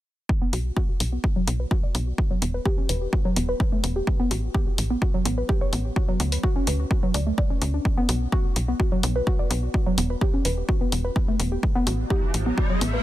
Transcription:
0.29 kick
0.42 B3
0.53 B1 F#4, open hi-hat
0.77 F#4, kick
1.00 B1, open hi-hat
1.12 B3
1.24 F#4, kick
1.36 F#3
1.47 B1 B3, open hi-hat
1.60 B4
1.71 F#4, kick
1.83 D5
1.95 B1 B3, open hi-hat
2.18 F#4, kick
2.31 F#3
2.42 E1 B3, open hi-hat
2.54 B4
2.66 G4, kick
2.78 C#4
2.89 E1 B4, open hi-hat
3.13 F#4, kick
3.25 F#3
3.36 E1 B3, open hi-hat
3.49 B4
3.60 kick
3.72 A3
3.84 E1 B3, open hi-hat
3.96 G4
4.07 kick
4.20 B3
4.31 A1 F#4, open hi-hat
4.54 G4, kick
4.78 A1, open hi-hat
4.90 B3
5.02 F#4, kick
5.14 F#3
5.25 A1 B3, open hi-hat
5.38 B4
5.49 G4, kick
5.61 C#5
5.73 A1 B3, open hi-hat
5.96 F#4, kick
6.08 F#3
6.20 D2 B3, open hi-hat
6.32 B4, open hi-hat
6.43 F#4, kick
6.56 C#4
6.67 D2 B4, open hi-hat
6.91 F#4, kick
7.03 F#3
7.14 D2 D5, open hi-hat
7.27 A3
7.38 D5, kick
7.50 C#4
7.62 D2 C#4, open hi-hat
7.74 D4
7.85 kick
7.97 B3
8.09 B1 F#4, open hi-hat
8.32 F#4, kick
8.56 B1, open hi-hat
8.68 B3
8.80 F#4, kick
8.92 F#3
9.03 B1 B3, open hi-hat
9.16 B4
9.27 F#4, kick
9.39 D5
9.51 B1 B3, open hi-hat
9.74 F#4, kick
9.86 F#3
9.98 E1 B3, open hi-hat
10.10 B4
10.21 G4, kick
10.34 C#4
10.45 E1 B4, open hi-hat
10.69 F#4, kick
10.81 B3
10.92 E1 B3, open hi-hat
11.05 B4
11.16 kick
11.28 A3
11.40 E1 B3, open hi-hat
11.52 G4
11.63 kick, riser
11.75 B3
11.87 A1 F#4, open hi-hat
12.10 G4, kick
12.34 A1, open hi-hat
12.46 B3
12.58 F#4, kick
12.70 F#3
12.81 A1 B3, open hi-hat
12.94 B4

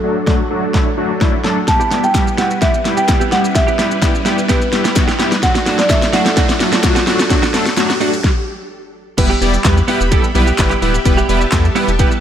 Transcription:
Already playing: F#3 D4 A4, riser
0.03 F#3 A3 D4 F#4
0.27 F#3 A3 D4 F#4, kick, snare
0.50 F#3 A3 D4 F#4
0.74 F#3 A3 D4 E4, kick, snare
0.97 F#3 A3 D4 F#4
1.21 F#3 A3 D4 E4, kick, snare
1.44 F#3 A3 D4 A4, snare
1.67 G3 B3 E4 G4 B4 A5, muted clean electric guitar stroke, kick, snare, closed hi-hat, shaker
1.80 B3 E4 G4, shaker
1.91 G3 B3 E4 G4, snare, closed hi-hat, shaker
2.03 G5, muted clean electric guitar stroke, shaker
2.14 G3 B3 E4 G4, kick, snare, clap, closed hi-hat, shaker
2.27 muted clean electric guitar stroke, shaker
2.38 G3 B3 E4 F#4 G4 F#5, snare, closed hi-hat, shaker
2.50 muted clean electric guitar stroke, shaker
2.61 G3 B3 E4 G4 E5, kick, snare, closed hi-hat, shaker
2.74 muted clean electric guitar stroke, shaker
2.85 G3 B3 E4 G4, muted clean electric guitar stroke, snare, closed hi-hat, shaker
2.97 B3 E4 G4 G5, shaker
3.08 G3 B3 E4 G4, kick, snare, clap, closed hi-hat, shaker
3.20 B3 E4 G4, shaker
3.31 G3 B3 E4 G4 F#5, snare, closed hi-hat, shaker
3.44 muted clean electric guitar stroke, shaker
3.55 G3 B3 E4 G4 E5, muted clean electric guitar stroke, kick, snare, closed hi-hat, shaker
3.67 B3 E4 G4, shaker
3.78 G3 B3 E4 G4, snare, closed hi-hat, shaker
3.91 muted clean electric guitar stroke, shaker
4.02 G3 B3 E4 G4, kick, snare, clap, closed hi-hat, shaker
4.14 muted clean electric guitar stroke, shaker
4.25 G3 B3 E4 G4, snare, closed hi-hat, shaker
4.38 muted clean electric guitar stroke, shaker
4.48 G3 B3 E4 G4 B4, kick, snare, closed hi-hat, shaker
4.61 muted clean electric guitar stroke, shaker
4.72 G3 B3 E4 G4, muted clean electric guitar stroke, snare, closed hi-hat, shaker
4.84 B3 E4 G4, snare, shaker
4.96 G3 B3 E4 F#4, muted clean electric guitar stroke, kick, snare, clap, closed hi-hat, shaker
5.08 B3 E4 G4, snare, shaker
5.19 G3 B3 E4 G4, snare, closed hi-hat, shaker
5.31 muted clean electric guitar stroke, snare, shaker
5.42 F#3 A3 D4 F#4 A4 F#5, muted clean electric guitar stroke, kick, snare, closed hi-hat, shaker
5.55 A3 D4 F#4, snare, shaker
5.66 F#3 A3 D4 F#4, snare, open hi-hat, shaker
5.78 D5, muted clean electric guitar stroke, snare, shaker
5.90 F#3 A3 D4 A4 E5, kick, snare, clap, closed hi-hat, shaker
6.02 muted clean electric guitar stroke, snare, shaker
6.13 F#3 A3 D4 F#4 F#5, snare, open hi-hat, shaker
6.25 muted clean electric guitar stroke, snare, shaker
6.36 F#3 A3 D4 F#4, kick, snare, closed hi-hat, shaker
6.49 muted clean electric guitar stroke, snare, shaker
6.60 F#3 A3 D4 F#4, muted clean electric guitar stroke, snare, open hi-hat, shaker
6.72 A3 D4 F#4, snare, shaker
6.83 F#3 A3 D4 F#4, muted clean electric guitar stroke, kick, snare, clap, closed hi-hat, shaker
6.95 A3 D4 F#4, snare, shaker
7.07 F#3 A3 D4 F#4, snare, open hi-hat, shaker
7.19 muted clean electric guitar stroke, snare, shaker
7.30 F#3 A3 D4 F#4, muted clean electric guitar stroke, kick, snare, closed hi-hat, shaker
7.42 A3 D4 F#4, snare, shaker
7.53 F#3 A3 D4 F#4 A4, snare, open hi-hat, shaker
7.66 muted clean electric guitar stroke, snare, shaker
7.77 F#3 A3 D4 F#4, snare, clap, closed hi-hat, shaker
7.90 muted clean electric guitar stroke, snare, shaker
8.00 F#3 A3 D4 F#4, open hi-hat, shaker
8.13 muted clean electric guitar stroke, shaker
8.24 kick, snare
9.18 E1 G3 B3 E4 G4 B4 E5 B5, muted clean electric guitar stroke, kick, closed hi-hat, crash, shaker
9.30 B3 E4 G4, shaker
9.41 E1 G3 B3 E4 G4 D5, open hi-hat, shaker
9.53 muted clean electric guitar stroke, shaker
9.64 E2 G3 B3 E4 G4 B4, kick, snare, clap, closed hi-hat, shaker
9.77 muted clean electric guitar stroke, shaker
9.88 G3 B3 E4 G4 B4, open hi-hat, shaker
10.00 E1, muted clean electric guitar stroke, shaker
10.11 G3 B3 E4 G4 A4, kick, closed hi-hat, shaker
10.24 muted clean electric guitar stroke, shaker
10.35 B1 G3 B3 E4 G4 B4, muted clean electric guitar stroke, open hi-hat, shaker
10.47 B3 E4 G4, shaker
10.58 G1 G3 B3 E4 G4 B4, muted clean electric guitar stroke, kick, snare, clap, closed hi-hat, shaker
10.70 B3 E4 G4, clap, shaker
10.81 D1 G3 B3 E4 G4 B4, open hi-hat, shaker
10.94 muted clean electric guitar stroke, shaker
11.05 E1 G3 B3 E4 G4 B4 A5, muted clean electric guitar stroke, kick, closed hi-hat, shaker
11.17 B3 E4 G4, shaker
11.28 E1 G3 B3 E4 G4 B4, open hi-hat, shaker
11.41 muted clean electric guitar stroke, shaker
11.52 E2 G3 B3 E4 G4 A4, kick, snare, clap, closed hi-hat, shaker
11.64 muted clean electric guitar stroke, shaker
11.75 G3 B3 E4 G4 B4, open hi-hat, shaker
11.88 E1, muted clean electric guitar stroke, shaker
11.99 G3 B3 E4 G4 B4, kick, closed hi-hat, shaker
12.11 muted clean electric guitar stroke, shaker

